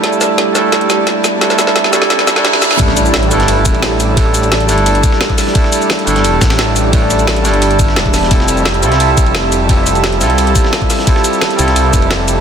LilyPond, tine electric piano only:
\new Staff \with { instrumentName = "Tine electric piano" } { \time 4/4 \key a \phrygian \tempo 4 = 174 <g a d' e' a'>4. <g a d' e' a'>2~ <g a d' e' a'>8 | <g a d' e' a'>4. <g a d' e' a'>4~ <g a d' e' a'>16 <g a d' e' a'>4~ <g a d' e' a'>16 | <g a d' e' a'>4. <g a d' e' a'>2~ <g a d' e' a'>8 | <g a d' e' a'>4. <g a d' e' a'>2~ <g a d' e' a'>8 |
<g a d' e' a'>4. <g a d' e' a'>2~ <g a d' e' a'>8 | <g a d' e' a'>4. <g a d' e' a'>2~ <g a d' e' a'>8 | <g c' e' f' a'>4. <g c' e' f' a'>2~ <g c' e' f' a'>8 | <g c' e' f' a'>4. <g c' e' f' a'>2~ <g c' e' f' a'>8 |
<g c' e' f' a'>4. <g c' e' f' a'>2~ <g c' e' f' a'>8 | }